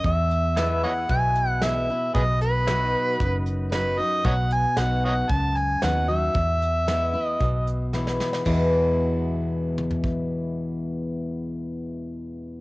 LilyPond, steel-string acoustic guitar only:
\new Staff \with { instrumentName = "Steel-string acoustic guitar" } { \time 4/4 \key e \major \tempo 4 = 114 << { r4 <e gis b e'>8 <b e'>8 r4 <e gis b e'>8 <b e'>8 | r4 <fis b dis' fis'>4 r4 <fis b dis' fis'>8 <dis' fis'>8 | r4 <fis b dis' fis'>4 r4 <fis b dis' fis'>8 <dis' fis'>8 | r4 <e gis b e'>8 <b e'>8 r4 <e gis b e'>4 |
<e, b, e gis b e'>1~ | <e, b, e gis b e'>1 | } \\ { e,2 b,2 | b,2 fis,2 | b,2 fis,2 | e,2 b,2 |
r1 | r1 | } >> }